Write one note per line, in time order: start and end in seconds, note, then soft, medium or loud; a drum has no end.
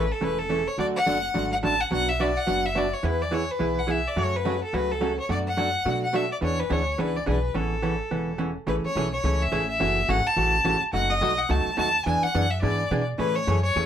0.00 0.11 A1 medium
0.00 0.13 B4 loud
0.12 0.25 A4 medium
0.21 0.67 E1 medium
0.21 0.40 C#3 medium
0.21 0.41 E3 soft
0.21 0.40 A3 medium
0.21 0.41 C#4 medium
0.21 0.41 A4 medium
0.21 0.40 B4 medium
0.39 0.69 A4 medium
0.49 0.60 C#3 medium
0.49 0.60 E3 medium
0.49 0.61 A3 medium
0.49 0.61 C#4 medium
0.49 0.61 A4 medium
0.68 0.78 C#5 medium
0.78 1.00 D2 medium
0.78 0.97 D3 medium
0.78 0.97 F#3 medium
0.78 0.98 A3 medium
0.78 0.98 D4 medium
0.78 0.98 F#4 medium
0.78 0.87 D5 loud
0.96 1.48 F#5 loud
1.06 1.30 F#1 medium
1.06 1.17 D3 medium
1.06 1.17 F#3 medium
1.06 1.17 A3 medium
1.06 1.17 D4 medium
1.06 1.17 F#4 medium
1.34 1.58 G#1 medium
1.34 1.53 D3 medium
1.34 1.54 F#3 medium
1.34 1.54 A3 medium
1.34 1.54 D4 medium
1.34 1.54 F#4 medium
1.52 1.57 F#5 medium
1.63 1.87 A1 medium
1.63 1.73 D3 medium
1.63 1.74 F#3 medium
1.63 1.74 A3 medium
1.63 1.74 D4 medium
1.63 1.74 F#4 medium
1.63 1.82 A5 loud
1.81 1.91 F#5 medium
1.91 2.36 B1 medium
1.91 2.10 B2 medium
1.91 2.10 F#3 medium
1.91 2.10 B3 medium
1.91 2.10 D4 medium
1.91 2.10 F#4 medium
1.91 2.10 F#5 loud
2.09 2.22 E5 loud
2.20 2.30 B2 medium
2.20 2.30 F#3 medium
2.20 2.30 B3 medium
2.20 2.30 D4 medium
2.20 2.30 F#4 medium
2.20 2.38 D5 medium
2.37 2.67 F#5 loud
2.47 2.92 F#1 medium
2.47 2.66 B2 soft
2.47 2.66 F#3 medium
2.47 2.66 B3 medium
2.47 2.66 D4 medium
2.47 2.66 F#4 medium
2.65 2.79 E5 loud
2.75 2.86 B2 medium
2.75 2.86 F#3 medium
2.75 2.86 B3 medium
2.75 2.86 D4 medium
2.75 2.87 F#4 medium
2.75 2.95 D5 medium
2.93 3.07 C#5 medium
3.03 3.48 E2 medium
3.03 3.22 E3 medium
3.03 3.23 B3 medium
3.03 3.23 E4 medium
3.03 3.23 G#4 medium
3.03 3.23 B4 loud
3.22 3.35 D5 medium
3.31 3.42 E3 medium
3.31 3.42 B3 medium
3.31 3.43 E4 medium
3.31 3.43 G#4 medium
3.31 3.52 C#5 medium
3.51 3.81 B4 medium
3.59 4.05 B1 medium
3.59 3.79 E3 medium
3.59 3.79 B3 medium
3.59 3.79 E4 medium
3.59 3.79 G#4 medium
3.79 3.92 F#5 medium
3.87 3.98 E3 medium
3.87 3.99 B3 medium
3.87 3.99 E4 medium
3.87 3.99 G#4 medium
3.87 4.09 E5 medium
4.07 4.20 D5 medium
4.16 4.61 F#2 medium
4.16 4.35 C#3 medium
4.16 4.36 F#3 medium
4.16 4.36 A3 medium
4.16 4.36 C#4 medium
4.16 4.36 F#4 medium
4.16 4.37 C#5 loud
4.36 4.63 B4 medium
4.45 4.55 C#3 medium
4.45 4.56 F#3 medium
4.45 4.56 A3 medium
4.45 4.56 C#4 medium
4.45 4.56 F#4 medium
4.64 4.76 A4 medium
4.73 5.18 C#2 medium
4.73 4.92 C#3 medium
4.73 4.92 F#3 medium
4.73 4.92 A3 medium
4.73 4.92 C#4 medium
4.73 4.92 F#4 medium
4.73 4.93 B4 medium
4.91 5.19 A4 medium
5.01 5.12 C#3 medium
5.01 5.12 F#3 medium
5.01 5.12 A3 medium
5.01 5.12 C#4 medium
5.01 5.12 F#4 medium
5.20 5.29 C#5 medium
5.29 5.74 F#2 medium
5.29 5.48 B2 medium
5.29 5.48 F#3 medium
5.29 5.48 A3 medium
5.29 5.48 D4 medium
5.29 5.49 F#4 medium
5.29 5.38 D5 medium
5.48 5.99 F#5 loud
5.57 5.68 B2 medium
5.57 5.68 F#3 medium
5.57 5.68 A3 medium
5.57 5.68 D4 medium
5.57 5.68 F#4 medium
5.85 6.31 B2 medium
5.85 6.05 B2 medium
5.85 6.05 F#3 medium
5.85 6.05 A3 medium
5.85 6.05 D4 medium
5.85 6.05 F#4 medium
6.04 6.17 F#5 medium
6.13 6.24 B2 medium
6.13 6.24 F#3 medium
6.13 6.25 A3 medium
6.13 6.24 D4 medium
6.13 6.25 F#4 medium
6.13 6.31 E5 medium
6.32 6.37 D5 medium
6.41 6.64 E2 medium
6.41 6.61 E3 medium
6.41 6.61 B3 medium
6.41 6.61 D4 medium
6.41 6.61 G#4 medium
6.41 6.61 C#5 loud
6.60 6.74 B4 medium
6.70 6.94 D2 medium
6.70 6.81 E3 medium
6.70 6.81 B3 medium
6.70 6.81 D4 medium
6.70 6.81 G#4 medium
6.70 7.02 C#5 medium
6.98 7.23 C#2 medium
6.98 7.17 E3 medium
6.98 7.18 B3 medium
6.98 7.18 D4 medium
6.98 7.18 G#4 medium
6.98 7.18 B4 medium
7.16 7.27 D5 medium
7.26 7.51 B1 medium
7.26 7.37 E3 medium
7.26 7.37 B3 medium
7.26 7.37 D4 medium
7.26 7.38 G#4 medium
7.26 7.56 B4 medium
7.54 8.00 A1 medium
7.54 7.74 C#3 medium
7.54 7.74 E3 medium
7.54 7.74 B3 medium
7.54 7.74 C#4 medium
7.54 8.39 A4 medium
7.82 7.93 C#3 medium
7.82 7.94 E3 medium
7.82 7.94 B3 medium
7.82 7.94 C#4 medium
8.11 8.56 E1 medium
8.11 8.30 C#3 medium
8.11 8.30 E3 medium
8.11 8.30 B3 medium
8.11 8.31 C#4 medium
8.38 8.49 C#3 medium
8.38 8.50 E3 medium
8.38 8.50 B3 medium
8.38 8.50 C#4 medium
8.67 8.83 A1 medium
8.67 8.86 C#3 medium
8.67 8.86 E3 medium
8.67 8.86 A3 medium
8.67 8.87 C#4 medium
8.67 8.87 G#4 medium
8.67 8.75 B4 medium
8.84 9.11 C#5 loud
8.84 muted upright bass stroke soft
8.96 9.23 B1 medium
8.96 9.06 C#3 medium
8.96 9.07 E3 medium
8.96 9.07 A3 medium
8.96 9.07 C#4 medium
8.96 9.07 G#4 medium
9.13 9.43 C#5 loud
9.24 9.51 C#2 medium
9.24 9.43 C#3 medium
9.24 9.43 E3 medium
9.24 9.43 A3 medium
9.24 9.44 C#4 medium
9.24 9.44 G#4 medium
9.42 9.69 E5 loud
9.52 9.79 A1 medium
9.52 9.63 C#3 medium
9.52 9.63 E3 medium
9.52 9.63 A3 medium
9.52 9.63 C#4 medium
9.52 9.63 G#4 medium
9.70 10.11 E5 loud
9.80 10.07 F#1 medium
9.80 9.99 C#3 medium
9.80 10.00 E3 medium
9.80 10.00 A3 medium
9.80 10.00 C#4 medium
9.80 10.00 F#4 medium
10.08 10.24 G#1 medium
10.08 10.19 C#3 medium
10.08 10.19 E3 medium
10.08 10.19 A3 medium
10.08 10.20 C#4 medium
10.08 10.19 F#4 medium
10.08 10.28 F#5 loud
10.27 10.82 A5 loud
10.36 10.64 A1 medium
10.36 10.56 C#3 medium
10.36 10.56 E3 medium
10.36 10.56 A3 medium
10.36 10.56 C#4 medium
10.36 10.56 F#4 medium
10.65 10.80 A1 medium
10.65 10.75 C#3 medium
10.65 10.76 E3 medium
10.65 10.76 A3 medium
10.65 10.76 C#4 medium
10.65 10.76 F#4 medium
10.81 muted upright bass stroke soft
10.93 11.20 F#1 medium
10.93 11.12 B2 medium
10.93 11.13 F#3 medium
10.93 11.13 A3 medium
10.93 11.13 D#4 medium
10.93 11.13 F#4 medium
10.93 11.12 F#5 loud
11.10 11.40 D#5 loud
11.21 11.49 B1 medium
11.21 11.32 B2 medium
11.21 11.32 F#3 medium
11.21 11.32 A3 medium
11.21 11.32 D#4 medium
11.21 11.33 F#4 medium
11.38 11.52 F#5 loud
11.49 11.65 C#2 medium
11.49 11.68 B2 medium
11.49 11.69 F#3 medium
11.49 11.69 A3 medium
11.49 11.69 D#4 medium
11.49 11.69 F#4 medium
11.49 11.77 A5 loud
11.66 muted upright bass stroke soft
11.77 12.05 D#2 medium
11.77 11.88 B2 medium
11.77 11.88 F#3 medium
11.77 11.88 A3 medium
11.77 11.88 D#4 medium
11.77 11.89 F#4 medium
11.77 12.04 A5 loud
12.05 12.22 E2 medium
12.05 12.25 E3 medium
12.05 12.25 B3 medium
12.05 12.26 D4 medium
12.05 12.26 G#4 medium
12.05 12.24 G#5 loud
12.23 12.52 F#5 loud
12.23 muted upright bass stroke soft
12.35 12.62 F#2 medium
12.35 12.45 E3 medium
12.35 12.45 B3 medium
12.35 12.45 D4 medium
12.35 12.45 G#4 medium
12.50 12.61 E5 medium
12.61 12.90 G#2 medium
12.61 12.81 E3 medium
12.61 12.82 B3 medium
12.61 12.82 D4 medium
12.61 12.82 G#4 medium
12.61 13.04 D5 loud
12.91 13.18 B2 medium
12.91 13.02 E3 medium
12.91 13.02 B3 medium
12.91 13.02 D4 medium
12.91 13.02 G#4 medium
13.18 13.46 A2 medium
13.18 13.38 C#3 medium
13.18 13.38 E3 medium
13.18 13.38 A3 medium
13.18 13.38 C#4 medium
13.18 13.38 G#4 medium
13.18 13.37 B4 loud
13.36 13.62 C#5 loud
13.47 13.75 F#2 medium
13.47 13.58 C#3 medium
13.47 13.58 E3 medium
13.47 13.58 A3 medium
13.47 13.58 C#4 medium
13.47 13.58 G#4 medium
13.62 13.86 C#5 loud
13.76 13.86 E2 medium
13.76 13.86 C#3 medium
13.76 13.86 E3 medium
13.76 13.86 A3 medium
13.76 13.86 C#4 medium
13.76 13.86 G#4 medium